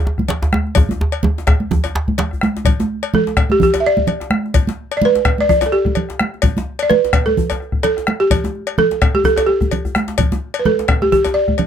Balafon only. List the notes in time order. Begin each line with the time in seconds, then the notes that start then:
3.15 A4
3.52 G4
3.63 G4
3.80 E5
3.86 D5
4.97 D5
5.05 B4
5.41 D5
5.49 D5
5.66 A4
5.72 G4
6.83 D5
6.90 B4
7.26 A4
7.83 A4
8.20 G4
8.79 A4
9.15 G4
9.25 A4
9.37 A4
9.46 G4
10.59 B4
10.66 A4
11.02 G4
11.12 G4
11.34 D5